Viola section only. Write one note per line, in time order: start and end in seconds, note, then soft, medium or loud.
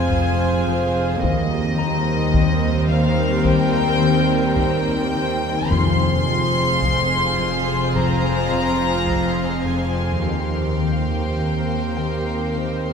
0.00 1.19 C4 medium
0.00 1.19 F4 medium
1.22 5.67 G3 medium
1.22 5.67 C4 medium
5.71 10.19 C4 medium
5.71 10.18 F4 medium
10.23 12.93 C4 soft
10.23 12.93 G4 soft